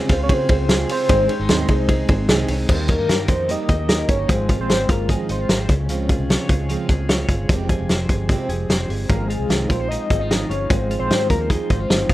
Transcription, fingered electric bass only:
0.09 0.26 C#2 loud
0.29 0.46 C#3 loud
0.50 0.83 C#2 loud
1.09 1.26 G#1 loud
1.40 1.48 G#1 loud
1.50 1.66 D#2 loud
1.69 2.03 C2 medium
2.09 2.26 G#1 loud
2.29 2.46 C2 medium
2.49 2.66 C2 medium
2.69 2.95 D#2 loud
2.99 3.07 G2 medium
3.09 3.26 G2 medium
3.29 3.54 F2 medium
3.69 4.03 D#2 medium
4.09 4.26 G1 medium
4.30 4.55 G#1 loud
4.59 4.68 A#1 medium
4.70 4.87 G#1 medium
4.89 5.15 G1 medium
5.29 5.46 G#1 medium
5.49 5.66 G#1 medium
5.69 6.12 C#2 loud
6.19 6.36 C2 medium
6.50 6.75 C#2 medium
6.89 7.23 C#2 loud
7.29 7.46 G1 medium
7.49 7.75 F1 loud
7.80 7.88 F1 medium
7.90 8.07 F1 medium
8.10 8.35 G1 medium
8.49 8.66 F1 medium
8.69 8.86 F1 medium
8.89 9.06 G1 medium
9.10 9.35 G#1 loud
9.39 9.48 C2 medium
9.49 9.66 C2 medium
9.70 9.96 A#1 medium
10.11 10.44 G#1 medium
10.50 10.67 G1 medium
10.70 10.96 G#1 loud
11.00 11.08 A#1 medium
11.10 11.27 G#2 medium
11.30 11.56 D#2 medium
11.70 11.87 G#1 loud
11.90 12.07 G1 medium
12.10 12.14 G#1 medium

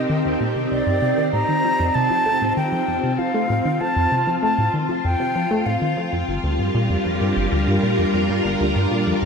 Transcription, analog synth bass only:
0.09 0.24 D#3 loud
0.25 0.36 D#2 medium
0.40 0.55 A#2 medium
0.56 0.67 C3 medium
0.71 0.82 C2 medium
0.86 1.01 G2 medium
1.02 1.13 C3 medium
1.18 1.32 D#3 loud
1.33 1.44 A2 medium
1.48 1.63 D#3 medium
1.64 1.75 F3 medium
1.79 1.91 F2 medium
1.95 2.10 C3 medium
2.10 2.22 F3 medium
2.26 2.41 A3 medium
2.41 2.53 A2 medium
2.57 2.72 D#3 medium
2.72 2.83 F3 medium
2.88 2.99 F2 medium
3.03 3.18 C3 medium
3.19 3.30 F3 medium
3.34 3.49 A3 loud
3.50 3.61 A2 medium
3.65 3.80 D#3 medium
3.81 3.92 F3 medium
3.96 4.07 F2 medium
4.12 4.26 C3 medium
4.27 4.38 F3 medium
4.42 4.57 A3 loud
4.58 4.69 A2 medium
4.73 4.88 D#3 medium
4.89 5.00 F3 medium
5.04 5.15 F2 medium
5.20 5.34 C3 medium
5.35 5.46 F3 medium
5.51 5.65 A3 loud
5.66 5.77 A2 medium
5.81 5.96 D#3 medium
5.97 6.08 F3 medium
6.12 6.24 F2 medium
6.28 6.39 G1 medium
6.43 6.58 D2 medium
6.59 6.70 G2 medium
6.74 6.89 A#2 loud
6.90 6.97 F2 medium
7.05 7.20 F2 medium
7.21 7.32 G2 medium
7.36 7.47 G1 medium
7.52 7.66 D2 medium
7.67 7.78 G2 medium
7.83 7.97 A#2 loud
7.98 8.05 F2 medium
8.14 8.28 F2 medium
8.29 8.40 G2 medium
8.45 8.56 G1 medium
8.60 8.75 D2 medium
8.76 8.87 G2 medium
8.91 9.06 A#2 loud
9.06 9.13 F2 medium
9.22 9.25 F2 medium

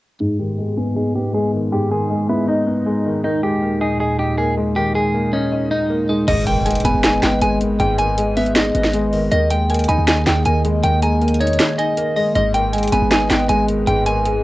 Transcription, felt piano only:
0.20 1.15 G#2 medium
0.39 1.34 D#3 medium
0.58 1.33 G#3 medium
0.77 1.14 B3 medium
0.96 1.91 D#4 medium
1.15 2.10 B3 medium
1.34 2.09 G#3 medium
1.53 1.90 D#3 medium
1.72 2.67 G#2 medium
1.91 2.86 D#3 medium
2.10 2.85 G#3 medium
2.29 2.66 B3 medium
2.48 3.24 D#4 medium
2.67 3.24 B3 medium
2.86 3.24 G#3 medium
3.05 3.23 D#3 medium
3.24 4.19 D#3 medium
3.43 4.38 G#3 medium
3.62 4.36 A#3 medium
3.81 4.18 D#4 medium
4.00 4.95 D#5 medium
4.19 5.14 D#4 medium
4.38 5.12 A#3 medium
4.57 4.93 G#3 medium
4.76 5.71 D#3 medium
4.95 5.90 G#3 medium
5.14 5.88 A#3 medium
5.33 5.70 D#4 medium
5.52 6.28 D#5 medium
5.71 6.28 D#4 medium
5.90 6.28 A#3 loud
6.09 6.28 G#3 medium
6.28 7.23 G#2 medium
6.47 7.42 D#3 medium
6.66 7.40 G#3 medium
6.85 7.21 B3 medium
7.04 7.99 D#4 medium
7.23 8.18 B3 medium
7.42 8.16 G#3 loud
7.61 7.97 D#3 medium
7.80 8.75 G#2 loud
7.99 8.94 D#3 medium
8.18 8.92 G#3 medium
8.37 8.73 B3 loud
8.56 9.32 D#4 medium
8.75 9.32 B3 medium
8.94 9.32 G#3 medium
9.13 9.30 D#3 medium
9.32 10.27 D#3 loud
9.51 10.46 G#3 medium
9.70 10.44 A#3 medium
9.89 10.25 D#4 loud
10.08 11.03 D#5 medium
10.27 11.22 D#4 medium
10.46 11.20 A#3 loud
10.65 11.01 G#3 medium
10.83 11.78 D#3 loud
11.02 11.97 G#3 medium
11.21 11.96 A#3 medium
11.40 11.77 D#4 loud
11.59 12.35 D#5 medium
11.79 12.35 D#4 medium
11.97 12.35 A#3 loud
12.17 12.36 G#3 medium
12.35 13.30 G#2 medium
12.54 13.49 D#3 medium
12.74 13.48 G#3 medium
12.93 13.29 B3 medium
13.12 14.06 D#4 medium
13.30 14.25 B3 medium
13.49 14.24 G#3 loud
13.68 14.05 D#3 medium
13.87 14.44 G#2 medium
14.06 14.44 D#3 medium
14.25 14.44 G#3 medium

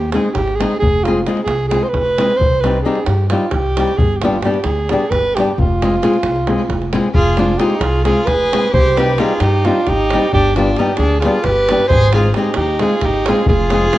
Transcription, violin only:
7.15 7.40 F4 loud
7.39 7.61 D4 medium
7.60 7.83 D#4 medium
7.81 8.05 F4 medium
8.06 8.29 F4 medium
8.28 8.73 G#4 medium
8.74 8.96 G4 loud
8.96 9.20 G4 medium
9.18 9.42 F4 medium
9.40 9.67 D#4 medium
9.66 9.90 D4 medium
9.88 10.34 D#4 medium
10.34 10.55 D4 loud
10.56 10.80 D4 medium
10.78 10.98 D#4 medium
10.98 11.21 D4 medium
11.22 11.46 F4 medium
11.44 11.90 G4 medium
11.90 12.12 G#4 medium
12.14 12.34 F4 medium
12.36 12.55 D#4 medium
12.58 12.84 D#4 medium
12.83 13.06 F4 medium
13.05 13.29 D#4 medium
13.28 13.49 F4 medium
13.50 13.98 F4 medium

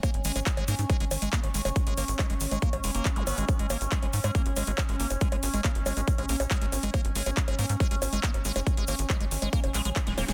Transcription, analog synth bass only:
0.14 0.21 G#1 medium
0.25 0.31 G#1 loud
0.36 0.42 G#1 medium
0.57 0.64 G#1 medium
0.68 0.74 G#2 loud
0.79 0.85 G#2 medium
1.00 1.07 G#1 medium
1.11 1.18 G#1 loud
1.22 1.28 G#1 medium
1.44 1.50 G#1 medium
1.54 1.61 G#1 loud
1.65 1.72 F#1 medium
1.87 1.93 G#1 medium
1.98 2.04 G#1 loud
2.08 2.15 G#1 medium
2.30 2.36 G#1 medium
2.41 2.47 G#1 loud
2.51 2.58 G#1 medium
2.73 2.80 A#1 medium
2.84 2.90 F#1 loud
2.95 3.01 F#1 loud
3.16 3.23 G#1 medium
3.27 3.33 G#1 loud
3.38 3.44 G#1 medium
3.59 3.66 G#1 medium
3.70 3.77 G#1 loud
3.81 3.87 G#1 medium
4.03 4.09 G#1 medium
4.13 4.20 G#2 loud
4.24 4.31 G#2 medium
4.46 4.52 G#1 medium
4.57 4.63 G#1 loud
4.67 4.74 G#1 loud
4.89 4.95 G#1 medium
5.00 5.06 G#1 loud
5.10 5.17 F#1 medium
5.32 5.39 G#1 medium
5.43 5.49 G#1 loud
5.54 5.60 G#1 medium
5.75 5.82 G#1 medium
5.86 5.92 G#1 loud
5.97 6.03 G#1 medium
6.18 6.25 A#1 medium
6.29 6.36 A#1 loud
6.40 6.46 A#1 loud
6.62 6.68 G#1 medium
6.72 6.79 G#1 loud
6.83 6.90 G#1 medium
7.05 7.11 G#1 medium
7.16 7.22 G#1 loud
7.26 7.33 G#1 medium
7.48 7.54 G#1 medium
7.59 7.65 G#2 loud
7.69 7.76 G#2 medium
7.91 7.98 G#1 medium
8.02 8.08 G#1 loud
8.13 8.19 G#1 loud
8.34 8.41 G#1 medium
8.45 8.52 G#1 loud
8.56 8.62 F#1 medium
8.77 8.84 G#1 medium
8.88 8.95 G#1 loud
8.99 9.05 G#1 medium
9.21 9.27 G#1 medium
9.31 9.38 G#1 loud
9.42 9.49 G#1 medium
9.64 9.70 F#1 medium
9.74 9.81 A#1 loud
9.85 9.92 A#1 loud
10.07 10.13 D#1 medium
10.18 10.24 D#1 loud
10.28 10.33 D#1 medium

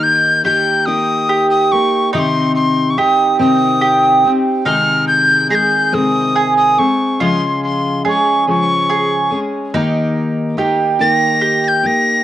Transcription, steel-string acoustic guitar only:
0.00 0.43 D#3 medium
0.00 0.43 A#3 medium
0.00 0.45 D#4 medium
0.00 0.46 G4 medium
0.44 0.87 D#3 medium
0.44 0.87 A#3 medium
0.44 0.86 D#4 medium
0.44 0.86 G4 medium
0.87 1.72 D#3 medium
0.87 1.72 A#3 medium
0.87 1.73 D#4 medium
0.87 1.71 G4 medium
1.72 2.14 A#3 soft
1.72 2.13 D#4 medium
1.72 2.14 G4 medium
2.14 2.98 C3 medium
2.14 2.96 D#3 medium
2.14 2.97 C4 medium
2.14 2.98 D#4 medium
2.14 2.98 G4 medium
2.97 3.38 D#3 medium
2.97 3.38 C4 medium
2.97 3.38 D#4 medium
2.97 3.38 G4 medium
3.39 4.25 C3 medium
3.39 4.24 D#3 medium
3.39 4.24 C4 medium
3.39 4.24 D#4 medium
3.39 4.23 G4 medium
4.24 4.65 C4 soft
4.24 4.66 D#4 soft
4.24 4.66 G4 medium
4.65 5.51 C3 medium
4.65 5.49 D#3 medium
4.65 5.50 G#3 medium
4.65 5.50 C4 medium
4.65 5.52 G#4 medium
5.50 5.92 D#3 medium
5.50 5.92 G#3 medium
5.50 5.92 C4 medium
5.50 5.91 G#4 medium
5.92 6.78 C3 medium
5.92 6.78 D#3 medium
5.92 6.78 G#3 medium
5.92 6.78 C4 medium
5.92 6.76 G#4 medium
6.78 7.19 G#3 soft
6.78 7.21 C4 medium
6.78 7.20 G#4 medium
7.20 8.05 C#3 medium
7.20 8.03 F3 medium
7.20 8.04 G#3 medium
7.20 8.05 C#4 medium
7.20 8.05 G#4 medium
8.04 8.47 F3 medium
8.04 8.47 G#3 medium
8.04 8.47 C#4 medium
8.04 8.46 G#4 medium
8.47 9.32 C#3 medium
8.47 9.32 F3 medium
8.47 9.32 G#3 medium
8.47 9.31 C#4 medium
8.47 9.29 G#4 medium
9.31 9.73 G#3 soft
9.31 9.74 C#4 medium
9.31 9.73 G#4 medium
9.74 10.56 D#3 medium
9.74 10.56 A#3 loud
9.74 10.58 D#4 loud
9.74 10.58 G4 loud
10.57 10.99 D#3 medium
10.57 10.99 A#3 medium
10.57 10.99 D#4 medium
10.57 10.98 G4 medium
10.99 11.85 D#3 medium
10.99 11.85 A#3 medium
10.99 11.84 D#4 medium
10.99 11.82 G4 medium
11.83 12.24 A#3 medium
11.83 12.24 D#4 medium
11.83 12.24 G4 medium

